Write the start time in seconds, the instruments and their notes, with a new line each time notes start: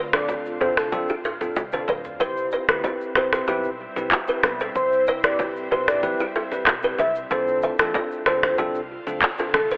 Already playing: fingered electric bass D2, ambient pad D3 C4 F4
0.13 tine electric piano C4 D4 F4 A4, kalimba A4 C5, soft synth lead D5, finger snap, cross-stick, low bongo, shaker
0.28 kick, high bongo, shaker
0.46 shaker
0.60 fingered electric bass C2, tine electric piano C4 D4 F4 A4, kalimba F4 A4, soft synth lead C5, high bongo
0.77 soft synth lead A4, finger snap, cross-stick, shaker
0.92 tine electric piano C4 D4 F4 A4, kick, low conga, shaker
1.09 kalimba E4 G4, shaker
1.24 kalimba F4 A4, mid tom, shaker
1.41 tine electric piano C4 D4 F4 A4, mid tom, low bongo, shaker
1.56 fingered electric bass C2, kick, high tom, high bongo, shaker
1.72 tine electric piano C4 D4 F4 A4, kalimba A4 C5, mid tom, shaker
1.88 fingered electric bass D2, kalimba B4 D5, mid tom, low bongo, low conga
2.05 floor tom, shaker
2.20 fingered electric bass C2, ambient pad G3 C4 E4, tine electric piano C4 E4 G4 C5, kalimba G4 B4, soft synth lead C5, kick, low conga, shaker
2.37 shaker
2.51 kalimba B4 D5, shaker
2.68 fingered electric bass D2, tine electric piano C4 E4 G4 B4, soft synth lead B4, finger snap, cross-stick, shaker
2.84 kalimba G4 C5, kick, high bongo, shaker
3.01 shaker
3.15 fingered electric bass C2, tine electric piano C4 E4 G4 B4, kalimba G4 B4, soft synth lead C5, finger snap, cross-stick, high bongo, low bongo
3.33 kalimba F4 A4, soft synth lead C5, finger snap, cross-stick, shaker
3.48 fingered electric bass B1, tine electric piano C4 E4 G4 B4, kalimba E4 G4, kick, low conga, shaker
3.64 shaker
3.96 fingered electric bass C2, tine electric piano C4 E4 G4 B4, low bongo, shaker
4.11 kick, clap, high bongo, shaker
4.27 tine electric piano C4 E4 G4 B4, kalimba G4 B4, shaker
4.43 fingered electric bass B1, soft synth lead B4, finger snap, cross-stick, low bongo, low conga, shaker
4.60 kalimba A4 C5, shaker
4.76 fingered electric bass C2, soft synth lead C5, kick, low conga, shaker
4.92 shaker
5.07 kalimba B4 D5, shaker
5.24 tine electric piano C4 E4 G4 B4, kalimba A4 C5, soft synth lead D5, finger snap, cross-stick, shaker
5.39 kick, high bongo, shaker
5.56 shaker
5.71 fingered electric bass B1, tine electric piano C4 E4 G4 B4, kalimba G4 B4, soft synth lead C5, high bongo, low bongo
5.88 soft synth lead D5, finger snap, cross-stick, shaker
6.03 tine electric piano C4 E4 G4 B4, kick, low conga, shaker
6.19 kalimba E4 G4, shaker
6.36 kalimba F4 A4
6.51 tine electric piano C4 E4 G4 B4, low bongo, shaker
6.67 fingered electric bass B1, finger snap, kick, cross-stick, clap, high bongo, shaker
6.83 tine electric piano C4 E4 G4 B4, kalimba G4 B4, shaker
6.98 fingered electric bass C2, kalimba A4 C5, soft synth lead E5, low bongo, low conga, shaker
7.15 shaker
7.31 fingered electric bass D2, ambient pad D3 C4 F4, tine electric piano C4 D4 F4 A4, kalimba A4 C5, soft synth lead C5, kick, low conga, shaker
7.48 shaker
7.62 kalimba C5 E5, shaker
7.79 fingered electric bass E2, tine electric piano C4 D4 F4 A4, soft synth lead A4, finger snap, cross-stick, shaker
7.94 kalimba A4 D5, kick, high bongo, shaker
8.12 shaker
8.26 fingered electric bass D2, tine electric piano C4 D4 F4 A4, kalimba A4 C5, soft synth lead C5, finger snap, cross-stick, high bongo, low bongo
8.43 kalimba F4 A4, soft synth lead C5, finger snap, cross-stick, shaker
8.58 fingered electric bass C2, tine electric piano C4 D4 F4 A4, kalimba D4 G4, kick, low conga, shaker
8.75 shaker
9.07 fingered electric bass D2, tine electric piano C4 D4 F4 A4, low bongo, shaker
9.22 kick, clap, high bongo, shaker
9.38 tine electric piano C4 D4 F4 A4, kalimba F4 A4, shaker
9.54 fingered electric bass C2, soft synth lead A4, finger snap, cross-stick, low bongo, low conga, shaker
9.71 kalimba A4 C5, shaker